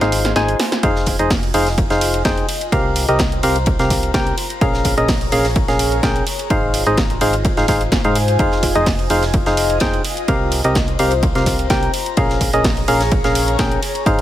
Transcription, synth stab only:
0.01 0.34 D#4 medium
0.01 0.33 G#4 medium
0.01 0.33 C5 medium
0.01 0.34 F5 medium
0.36 0.57 D#4 medium
0.36 0.57 G#4 medium
0.36 0.57 C5 medium
0.36 0.57 G#5 loud
0.83 1.17 D#4 medium
0.83 1.17 G#4 medium
0.83 1.16 C5 medium
0.83 1.17 F5 loud
1.19 1.32 D#4 medium
1.19 1.32 G#4 medium
1.19 1.32 C5 medium
1.19 1.32 D#5 loud
1.54 1.68 D#4 medium
1.54 1.68 G#4 medium
1.54 1.68 C5 medium
1.54 1.68 F5 loud
1.90 2.22 D#4 medium
1.90 2.22 G#4 medium
1.90 2.22 C5 medium
1.90 2.22 F5 medium
2.25 2.46 D#4 medium
2.25 2.46 G#4 medium
2.25 2.46 C5 medium
2.25 2.46 G5 medium
2.72 3.06 C4 medium
2.72 3.06 G4 medium
2.72 3.06 A#4 medium
2.72 3.06 F5 loud
3.09 3.21 C4 medium
3.09 3.21 G4 medium
3.09 3.21 A#4 medium
3.09 3.21 D#5 loud
3.43 3.57 C4 medium
3.43 3.57 G4 medium
3.43 3.57 A#4 medium
3.43 3.57 F5 loud
3.80 4.12 C4 medium
3.80 4.12 G4 medium
3.80 4.12 A#4 medium
3.80 4.12 F5 medium
4.14 4.35 C4 medium
4.14 4.35 G4 medium
4.14 4.35 A#4 medium
4.14 4.35 G5 loud
4.61 4.95 C#4 medium
4.61 4.95 G#4 medium
4.61 4.95 A#4 medium
4.61 4.95 F5 loud
4.98 5.10 C#4 medium
4.98 5.10 G#4 medium
4.98 5.10 A#4 medium
4.98 5.10 D#5 loud
5.32 5.46 C#4 medium
5.32 5.46 G#4 medium
5.32 5.46 A#4 medium
5.32 5.46 F5 loud
5.68 6.00 C#4 medium
5.68 6.00 G#4 medium
5.68 6.00 A#4 medium
5.68 6.00 F5 medium
6.03 6.24 C#4 medium
6.03 6.24 G#4 medium
6.03 6.24 A#4 medium
6.03 6.24 G5 loud
6.50 6.84 D#4 medium
6.50 6.84 G#4 medium
6.50 6.84 C5 medium
6.50 6.84 F5 loud
6.87 6.99 D#4 medium
6.87 6.99 G#4 medium
6.87 6.99 C5 medium
6.87 6.99 D#5 medium
7.21 7.35 D#4 loud
7.21 7.35 G#4 medium
7.21 7.35 C5 medium
7.21 7.35 F5 loud
7.57 7.66 D#4 medium
7.57 7.66 G#4 medium
7.57 7.66 C5 medium
7.57 7.66 F5 medium
7.68 7.82 D#4 medium
7.68 7.82 G#4 medium
7.68 7.82 C5 medium
7.68 7.82 F5 medium
8.05 8.17 D#4 medium
8.05 8.17 G#4 medium
8.05 8.17 C5 medium
8.05 8.17 F5 loud
8.39 8.73 D#4 medium
8.39 8.73 G#4 medium
8.39 8.73 C5 medium
8.39 8.73 F5 loud
8.75 8.88 D#4 medium
8.75 8.88 G#4 medium
8.75 8.88 C5 medium
8.75 8.88 D#5 loud
9.10 9.24 D#4 loud
9.10 9.24 G#4 medium
9.10 9.24 C5 medium
9.10 9.24 F5 loud
9.46 9.78 D#4 medium
9.46 9.78 G#4 medium
9.46 9.78 C5 medium
9.46 9.78 F5 medium
9.81 10.02 D#4 medium
9.81 10.02 G#4 medium
9.81 10.02 C5 medium
9.81 10.02 G5 medium
10.28 10.62 C4 medium
10.28 10.61 G4 medium
10.28 10.61 A#4 medium
10.28 10.62 F5 loud
10.65 10.77 C4 medium
10.65 10.77 G4 medium
10.65 10.77 A#4 medium
10.65 10.77 D#5 medium
10.99 11.13 C4 loud
10.99 11.13 G4 medium
10.99 11.13 A#4 medium
10.99 11.13 F5 loud
11.35 11.67 C4 medium
11.35 11.67 G4 medium
11.35 11.67 A#4 medium
11.35 11.67 F5 medium
11.70 11.91 C4 medium
11.70 11.91 G4 medium
11.70 11.91 A#4 medium
11.70 11.91 G5 loud
12.17 12.50 C#4 medium
12.17 12.50 G#4 medium
12.17 12.50 A#4 medium
12.17 12.50 F5 loud
12.54 12.66 C#4 medium
12.54 12.66 G#4 medium
12.54 12.66 A#4 medium
12.54 12.66 D#5 medium
12.88 13.02 C#4 medium
12.88 13.02 G#4 medium
12.88 13.02 A#4 medium
12.88 13.02 F5 loud
13.24 13.56 C#4 medium
13.24 13.56 G#4 medium
13.24 13.56 A#4 medium
13.24 13.56 F5 medium
13.59 13.80 C#4 medium
13.59 13.80 G#4 medium
13.59 13.80 A#4 medium
13.59 13.80 G5 medium
14.06 14.21 D#4 medium
14.06 14.21 G#4 medium
14.06 14.21 C5 medium
14.06 14.21 F5 loud

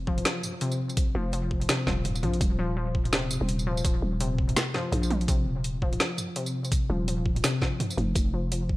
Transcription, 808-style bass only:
0.00 0.24 F1 medium
1.15 1.68 F1 medium
1.87 2.25 D#1 medium
2.23 2.40 A#1 loud
2.41 3.40 D#1 loud
3.41 4.02 D#1 medium
4.02 4.55 D#1 medium
4.92 5.47 A#1 medium
5.46 5.99 D#1 medium
6.90 7.43 D#1 medium
7.98 8.14 F1 loud
8.16 8.77 F1 loud

